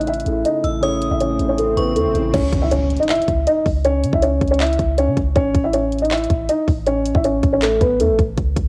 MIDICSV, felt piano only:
0, 0, Header, 1, 2, 480
1, 0, Start_track
1, 0, Tempo, 377358
1, 1053, Time_signature, 4, 2, 24, 8
1, 11042, End_track
2, 0, Start_track
2, 0, Title_t, "Felt piano"
2, 0, Program_c, 0, 0
2, 93, Note_on_c, 0, 76, 82
2, 103, Note_on_c, 0, 64, 69
2, 544, Note_off_c, 0, 76, 0
2, 550, Note_off_c, 0, 64, 0
2, 573, Note_on_c, 0, 75, 85
2, 584, Note_on_c, 0, 63, 65
2, 798, Note_off_c, 0, 75, 0
2, 803, Note_off_c, 0, 63, 0
2, 1051, Note_on_c, 0, 73, 93
2, 1061, Note_on_c, 0, 61, 70
2, 1391, Note_off_c, 0, 73, 0
2, 1396, Note_off_c, 0, 61, 0
2, 1413, Note_on_c, 0, 76, 75
2, 1423, Note_on_c, 0, 64, 54
2, 1525, Note_off_c, 0, 76, 0
2, 1530, Note_off_c, 0, 64, 0
2, 1532, Note_on_c, 0, 73, 75
2, 1543, Note_on_c, 0, 61, 64
2, 1871, Note_off_c, 0, 73, 0
2, 1877, Note_off_c, 0, 61, 0
2, 1893, Note_on_c, 0, 73, 76
2, 1903, Note_on_c, 0, 61, 64
2, 2005, Note_off_c, 0, 73, 0
2, 2011, Note_off_c, 0, 61, 0
2, 2013, Note_on_c, 0, 69, 81
2, 2023, Note_on_c, 0, 57, 70
2, 2237, Note_off_c, 0, 69, 0
2, 2243, Note_off_c, 0, 57, 0
2, 2252, Note_on_c, 0, 71, 88
2, 2262, Note_on_c, 0, 59, 65
2, 2477, Note_off_c, 0, 71, 0
2, 2482, Note_off_c, 0, 59, 0
2, 2493, Note_on_c, 0, 69, 84
2, 2503, Note_on_c, 0, 57, 72
2, 2717, Note_off_c, 0, 69, 0
2, 2723, Note_off_c, 0, 57, 0
2, 2973, Note_on_c, 0, 73, 94
2, 2983, Note_on_c, 0, 61, 77
2, 3311, Note_off_c, 0, 73, 0
2, 3317, Note_off_c, 0, 61, 0
2, 3333, Note_on_c, 0, 76, 81
2, 3343, Note_on_c, 0, 64, 59
2, 3445, Note_off_c, 0, 76, 0
2, 3451, Note_off_c, 0, 64, 0
2, 3453, Note_on_c, 0, 73, 85
2, 3463, Note_on_c, 0, 61, 64
2, 3792, Note_off_c, 0, 73, 0
2, 3797, Note_off_c, 0, 61, 0
2, 3814, Note_on_c, 0, 75, 74
2, 3823, Note_on_c, 0, 63, 62
2, 3926, Note_off_c, 0, 75, 0
2, 3931, Note_off_c, 0, 63, 0
2, 3934, Note_on_c, 0, 76, 87
2, 3943, Note_on_c, 0, 64, 69
2, 4385, Note_off_c, 0, 76, 0
2, 4390, Note_off_c, 0, 64, 0
2, 4415, Note_on_c, 0, 75, 89
2, 4425, Note_on_c, 0, 63, 66
2, 4638, Note_off_c, 0, 75, 0
2, 4644, Note_off_c, 0, 63, 0
2, 4895, Note_on_c, 0, 73, 98
2, 4905, Note_on_c, 0, 61, 75
2, 5232, Note_off_c, 0, 73, 0
2, 5238, Note_off_c, 0, 61, 0
2, 5253, Note_on_c, 0, 76, 73
2, 5264, Note_on_c, 0, 64, 59
2, 5365, Note_off_c, 0, 76, 0
2, 5371, Note_off_c, 0, 64, 0
2, 5373, Note_on_c, 0, 73, 83
2, 5384, Note_on_c, 0, 61, 64
2, 5712, Note_off_c, 0, 73, 0
2, 5717, Note_off_c, 0, 61, 0
2, 5735, Note_on_c, 0, 73, 85
2, 5745, Note_on_c, 0, 61, 64
2, 5846, Note_off_c, 0, 73, 0
2, 5852, Note_off_c, 0, 61, 0
2, 5853, Note_on_c, 0, 76, 84
2, 5863, Note_on_c, 0, 64, 60
2, 6305, Note_off_c, 0, 76, 0
2, 6310, Note_off_c, 0, 64, 0
2, 6333, Note_on_c, 0, 73, 95
2, 6344, Note_on_c, 0, 61, 66
2, 6558, Note_off_c, 0, 73, 0
2, 6563, Note_off_c, 0, 61, 0
2, 6813, Note_on_c, 0, 73, 105
2, 6824, Note_on_c, 0, 61, 80
2, 7152, Note_off_c, 0, 73, 0
2, 7157, Note_off_c, 0, 61, 0
2, 7173, Note_on_c, 0, 76, 82
2, 7183, Note_on_c, 0, 64, 68
2, 7285, Note_off_c, 0, 76, 0
2, 7291, Note_off_c, 0, 64, 0
2, 7294, Note_on_c, 0, 73, 84
2, 7304, Note_on_c, 0, 61, 66
2, 7632, Note_off_c, 0, 73, 0
2, 7637, Note_off_c, 0, 61, 0
2, 7654, Note_on_c, 0, 75, 73
2, 7664, Note_on_c, 0, 63, 54
2, 7766, Note_off_c, 0, 75, 0
2, 7771, Note_off_c, 0, 63, 0
2, 7773, Note_on_c, 0, 76, 85
2, 7784, Note_on_c, 0, 64, 68
2, 8225, Note_off_c, 0, 76, 0
2, 8230, Note_off_c, 0, 64, 0
2, 8254, Note_on_c, 0, 75, 90
2, 8265, Note_on_c, 0, 63, 66
2, 8478, Note_off_c, 0, 75, 0
2, 8484, Note_off_c, 0, 63, 0
2, 8732, Note_on_c, 0, 73, 96
2, 8743, Note_on_c, 0, 61, 74
2, 9071, Note_off_c, 0, 73, 0
2, 9077, Note_off_c, 0, 61, 0
2, 9093, Note_on_c, 0, 76, 79
2, 9103, Note_on_c, 0, 64, 55
2, 9205, Note_off_c, 0, 76, 0
2, 9211, Note_off_c, 0, 64, 0
2, 9213, Note_on_c, 0, 73, 80
2, 9223, Note_on_c, 0, 61, 68
2, 9552, Note_off_c, 0, 73, 0
2, 9557, Note_off_c, 0, 61, 0
2, 9574, Note_on_c, 0, 73, 75
2, 9584, Note_on_c, 0, 61, 64
2, 9686, Note_off_c, 0, 73, 0
2, 9691, Note_off_c, 0, 61, 0
2, 9693, Note_on_c, 0, 69, 80
2, 9703, Note_on_c, 0, 57, 74
2, 9918, Note_off_c, 0, 69, 0
2, 9923, Note_off_c, 0, 57, 0
2, 9933, Note_on_c, 0, 71, 88
2, 9943, Note_on_c, 0, 59, 65
2, 10157, Note_off_c, 0, 71, 0
2, 10163, Note_off_c, 0, 59, 0
2, 10173, Note_on_c, 0, 69, 84
2, 10183, Note_on_c, 0, 57, 71
2, 10397, Note_off_c, 0, 69, 0
2, 10403, Note_off_c, 0, 57, 0
2, 11042, End_track
0, 0, End_of_file